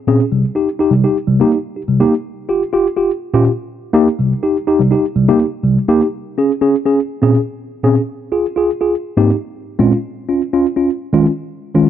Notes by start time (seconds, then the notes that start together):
0.07 A#2 C4 C#4 G#4
0.20 C#4 G#4
0.32 C3 G3
0.55 D#4 G4
0.79 D#4 G4
0.91 C3 G3
1.04 D#4 G4
1.27 C3 G3
1.40 A#3 D#4 G4
1.52 D#4 G4
1.76 D#4 G4
1.88 C3 G3
2.00 A#3 D#4 G4
2.49 F4 G4
2.73 F4 G4
2.97 F4 G4
3.34 A#2 C#4 F4 G4
3.45 F4 G4
3.93 A#3 D#4 G4
4.19 C3 G3
4.43 D#4 G4
4.67 D#4 G4
4.79 C3 G3
4.91 D#4 G4
5.16 C3 G3
5.28 A#3 D#4 G4
5.40 D#4 G4
5.63 C3 G3
5.88 A#3 D#4 G4
6.01 D#4 G4
6.38 C#4 G#4
6.61 C#4 G#4
6.86 C#4 G#4
7.22 A#2 C4 C#4 G#4
7.35 C#4 G#4
7.83 A#2 C4 C#4 G#4
7.95 C#4 G#4
8.32 F4 G#4
8.56 F4 G#4
8.81 F4 G#4
9.17 G#2 A#3 C4 D#4 G4
9.30 D#4 G4
9.79 A#2 G#3 C4 C#4 F4
9.92 C#4 F4
10.29 C#4 F4
10.53 C#4 F4
10.76 C#4 F4
11.13 D#3 G#3 C#4 F4
11.26 C#4 F4
11.74 D#3 G#3 C#4 F4